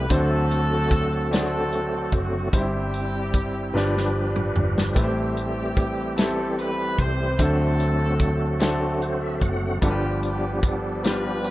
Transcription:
Already playing: G3 A3 B3 C4 E4 A4
0.09 D2 D3 F#3 A3 C4 D4 F#4 C5, kick, closed hi-hat
0.13 C4 F#4 A4
0.51 closed hi-hat
0.91 kick, closed hi-hat
1.31 A3 C4 D4 F#4 D5, snare, closed hi-hat
1.35 A4
1.72 closed hi-hat
2.12 F#1 F#4, kick, closed hi-hat
2.52 G1 G2 G3 C4 D#4 E4 G4 C5, kick, closed hi-hat
2.56 C4 E4 G4
2.94 closed hi-hat
3.34 kick, closed hi-hat
3.73 G1 G2 F3 G3 D4 G4 B4 D5, snare
3.97 snare
4.36 mid tom
4.56 G1, floor tom
4.78 snare
4.95 A1 A2 E3 G3 A3 C4 E4 G4 B4, kick, closed hi-hat
4.99 C4 E4
5.03 C5
5.37 C4 E4 G4, closed hi-hat
5.77 kick, closed hi-hat
6.16 A3 B3 E4 G4 A4, snare, closed hi-hat
6.24 C4
6.58 B4, closed hi-hat
6.99 C2 C5, kick, closed hi-hat
7.38 D2 D3 F#3 A3 C4 D4 F#4 A4 C5, kick, closed hi-hat
7.42 C4 F#4
7.79 closed hi-hat
8.20 kick, closed hi-hat
8.59 A3 C4 D4 F#4 A4, snare, closed hi-hat
9.02 C5, closed hi-hat
9.21 E5
9.41 F#1 F#5, kick, closed hi-hat
9.81 G1 G2 F3 G3 B3 D4 F4 G4 A4, kick, closed hi-hat
9.86 B3 D4
9.90 B4
10.23 G4, closed hi-hat
10.63 A4, kick, closed hi-hat
11.03 G3 B3 D4 F4 G4 B4, snare, closed hi-hat
11.44 closed hi-hat

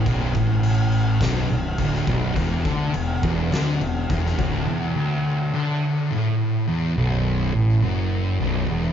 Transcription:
0.06 B0 B1, kick, crash
0.35 A1 A2, kick, crash
0.63 crash
0.92 crash
1.21 B0 B1, kick, snare, crash
1.49 B0 B1, crash
1.78 D1 D2, kick, crash
1.95 snare
2.07 B0 B1, kick, crash
2.36 E1 E2, kick, crash
2.65 D2 D3, kick, crash
2.94 E1 E2, crash
3.23 E1 E2, kick, crash
3.52 D2 D3, snare, crash
3.81 E1 E2, crash
4.10 E1 E2, kick, crash
4.26 snare
4.38 D1 D2, kick, crash
4.68 E2
4.96 D2
5.53 D3
6.11 A2
6.67 E2
6.97 B0 B1
7.53 A1 A2
7.82 F#1 F#2
8.40 B0 B1
8.68 E1 E2

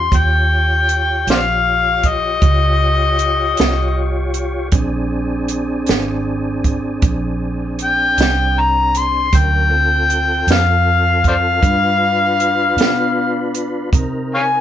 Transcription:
Already playing: C6
0.11 D#2 F4 G4 C#5, kick, closed hi-hat
0.16 G5
0.89 closed hi-hat
1.27 A#1 C5 D5 F5, snare, closed hi-hat
2.03 kick, closed hi-hat
2.08 D#5
2.42 C#2, kick, closed hi-hat
3.19 closed hi-hat
3.57 C2, snare, closed hi-hat
4.34 closed hi-hat
4.72 A#1 C4 D4 G#4, kick, closed hi-hat
5.48 closed hi-hat
5.86 G#1, snare, closed hi-hat
6.64 kick, closed hi-hat
7.02 A#1, kick, closed hi-hat
7.79 closed hi-hat
7.84 G5
8.18 C2, snare, closed hi-hat
8.60 A#5
8.95 C6, closed hi-hat
9.33 D2 F#3 C#4 A#4, kick, closed hi-hat
9.37 G5
9.69 C4 F4 A4
10.10 closed hi-hat
10.47 F2, snare, closed hi-hat
10.52 F5
11.24 kick, closed hi-hat
11.28 C5 D5 F5
11.61 G2 D4 F4 B4, kick, closed hi-hat
12.40 closed hi-hat
12.77 B2, snare, closed hi-hat
13.55 closed hi-hat
13.93 C3 C4 D#4 A#4, kick, closed hi-hat
14.35 C#5 F5 G#5

